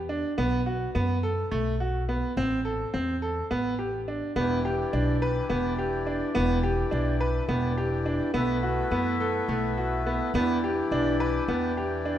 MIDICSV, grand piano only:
0, 0, Header, 1, 2, 480
1, 0, Start_track
1, 0, Key_signature, 1, "minor"
1, 0, Tempo, 569801
1, 319, Time_signature, 7, 3, 24, 8
1, 10262, End_track
2, 0, Start_track
2, 0, Title_t, "Grand piano"
2, 0, Program_c, 0, 0
2, 78, Note_on_c, 0, 62, 81
2, 257, Note_off_c, 0, 62, 0
2, 318, Note_on_c, 0, 59, 98
2, 497, Note_off_c, 0, 59, 0
2, 557, Note_on_c, 0, 66, 79
2, 737, Note_off_c, 0, 66, 0
2, 799, Note_on_c, 0, 59, 87
2, 977, Note_off_c, 0, 59, 0
2, 1038, Note_on_c, 0, 69, 84
2, 1217, Note_off_c, 0, 69, 0
2, 1276, Note_on_c, 0, 57, 94
2, 1455, Note_off_c, 0, 57, 0
2, 1518, Note_on_c, 0, 66, 76
2, 1697, Note_off_c, 0, 66, 0
2, 1758, Note_on_c, 0, 59, 76
2, 1936, Note_off_c, 0, 59, 0
2, 1998, Note_on_c, 0, 60, 97
2, 2176, Note_off_c, 0, 60, 0
2, 2232, Note_on_c, 0, 69, 79
2, 2412, Note_off_c, 0, 69, 0
2, 2473, Note_on_c, 0, 60, 83
2, 2653, Note_off_c, 0, 60, 0
2, 2714, Note_on_c, 0, 69, 81
2, 2893, Note_off_c, 0, 69, 0
2, 2954, Note_on_c, 0, 59, 90
2, 3133, Note_off_c, 0, 59, 0
2, 3190, Note_on_c, 0, 67, 70
2, 3371, Note_off_c, 0, 67, 0
2, 3436, Note_on_c, 0, 62, 67
2, 3614, Note_off_c, 0, 62, 0
2, 3673, Note_on_c, 0, 59, 94
2, 3852, Note_off_c, 0, 59, 0
2, 3917, Note_on_c, 0, 67, 76
2, 4094, Note_off_c, 0, 67, 0
2, 4154, Note_on_c, 0, 62, 81
2, 4332, Note_off_c, 0, 62, 0
2, 4397, Note_on_c, 0, 71, 87
2, 4574, Note_off_c, 0, 71, 0
2, 4629, Note_on_c, 0, 59, 87
2, 4809, Note_off_c, 0, 59, 0
2, 4873, Note_on_c, 0, 67, 73
2, 5052, Note_off_c, 0, 67, 0
2, 5110, Note_on_c, 0, 62, 73
2, 5290, Note_off_c, 0, 62, 0
2, 5347, Note_on_c, 0, 59, 103
2, 5527, Note_off_c, 0, 59, 0
2, 5588, Note_on_c, 0, 67, 78
2, 5768, Note_off_c, 0, 67, 0
2, 5823, Note_on_c, 0, 62, 81
2, 6005, Note_off_c, 0, 62, 0
2, 6069, Note_on_c, 0, 71, 84
2, 6249, Note_off_c, 0, 71, 0
2, 6306, Note_on_c, 0, 59, 88
2, 6487, Note_off_c, 0, 59, 0
2, 6549, Note_on_c, 0, 67, 76
2, 6729, Note_off_c, 0, 67, 0
2, 6787, Note_on_c, 0, 62, 76
2, 6968, Note_off_c, 0, 62, 0
2, 7024, Note_on_c, 0, 59, 94
2, 7205, Note_off_c, 0, 59, 0
2, 7269, Note_on_c, 0, 66, 78
2, 7449, Note_off_c, 0, 66, 0
2, 7510, Note_on_c, 0, 59, 84
2, 7690, Note_off_c, 0, 59, 0
2, 7754, Note_on_c, 0, 69, 83
2, 7932, Note_off_c, 0, 69, 0
2, 7994, Note_on_c, 0, 57, 86
2, 8172, Note_off_c, 0, 57, 0
2, 8234, Note_on_c, 0, 66, 70
2, 8412, Note_off_c, 0, 66, 0
2, 8478, Note_on_c, 0, 59, 76
2, 8655, Note_off_c, 0, 59, 0
2, 8717, Note_on_c, 0, 59, 104
2, 8894, Note_off_c, 0, 59, 0
2, 8962, Note_on_c, 0, 67, 74
2, 9138, Note_off_c, 0, 67, 0
2, 9198, Note_on_c, 0, 62, 91
2, 9376, Note_off_c, 0, 62, 0
2, 9436, Note_on_c, 0, 71, 86
2, 9614, Note_off_c, 0, 71, 0
2, 9674, Note_on_c, 0, 59, 86
2, 9853, Note_off_c, 0, 59, 0
2, 9918, Note_on_c, 0, 67, 71
2, 10096, Note_off_c, 0, 67, 0
2, 10155, Note_on_c, 0, 62, 74
2, 10262, Note_off_c, 0, 62, 0
2, 10262, End_track
0, 0, End_of_file